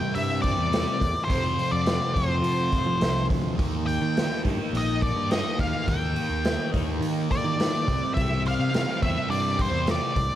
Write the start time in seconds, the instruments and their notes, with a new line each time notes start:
Already playing: distorted electric guitar C3 G3 C4, transistor combo organ C4 E4 G4 A#4, lead electric guitar G5
0.15 picked electric bass G2, lead electric guitar E5, open hi-hat
0.42 distorted electric guitar C3 G3 C4, lead electric guitar D5, kick, open hi-hat
0.58 picked electric bass E2
0.73 snare, open hi-hat
1.01 picked electric bass E2, kick, open hi-hat
1.25 distorted electric guitar F2, lead electric guitar C5
1.30 picked electric bass F2, distorted electric guitar C3 F3, transistor combo organ F4 A4 C5, kick, open hi-hat
1.59 open hi-hat
1.71 picked electric bass F2, lead electric guitar D5
1.86 snare, open hi-hat
2.13 picked electric bass F2, distorted electric guitar C3 F3, lead electric guitar C5, kick, open hi-hat
2.17 distorted electric guitar F2
2.42 picked electric bass F3, open hi-hat
2.72 kick, open hi-hat
2.86 picked electric bass F3
3.00 picked electric bass C2, distorted electric guitar F2 C3, snare, open hi-hat
3.05 distorted electric guitar F3
3.30 picked electric bass D2, kick, open hi-hat
3.56 picked electric bass D#2, distorted electric guitar D#3 A#3, transistor combo organ A#3 D#4 G4 A#4, kick, open hi-hat
3.61 distorted electric guitar D#4
3.87 lead electric guitar G5, open hi-hat
4.01 picked electric bass D#3
4.17 snare, open hi-hat
4.44 picked electric bass G2, distorted electric guitar A#3 D#4, kick, open hi-hat
4.48 distorted electric guitar D#3
4.73 picked electric bass A#1, lead electric guitar D#5, open hi-hat
5.02 lead electric guitar D5, kick, open hi-hat
5.16 picked electric bass G2
5.30 distorted electric guitar D#3 A#3, lead electric guitar D#5, snare, open hi-hat
5.34 distorted electric guitar D#4
5.59 picked electric bass D#2, lead electric guitar F5, kick, open hi-hat
5.87 picked electric bass D#2, distorted electric guitar D#3 A#3 D#4, lead electric guitar G5, kick, open hi-hat
6.16 open hi-hat
6.30 picked electric bass D#2
6.45 snare, open hi-hat
6.71 picked electric bass D#2, distorted electric guitar A#3 D#4, kick, open hi-hat
6.75 distorted electric guitar D#3
7.01 picked electric bass D#3, open hi-hat
7.31 lead electric guitar D5, kick, open hi-hat
7.44 picked electric bass D#3
7.57 distorted electric guitar D#3 A#3 D#4, snare, open hi-hat
7.85 picked electric bass C2, distorted electric guitar C3 G3 C4, transistor combo organ E3 C4, kick
7.89 open hi-hat
8.14 picked electric bass C2, lead electric guitar E5, kick, open hi-hat
8.46 lead electric guitar F5, open hi-hat
8.59 picked electric bass C3
8.71 distorted electric guitar C3 G3, open hi-hat
8.75 distorted electric guitar C4, snare
9.03 picked electric bass E2, lead electric guitar E5, kick, open hi-hat
9.29 picked electric bass G2, lead electric guitar D5, open hi-hat
9.57 distorted electric guitar C3 G3 C4, kick, open hi-hat
9.61 lead electric guitar C5
9.72 picked electric bass E2
9.87 snare, open hi-hat
9.91 lead electric guitar D5
10.16 picked electric bass C2, kick, open hi-hat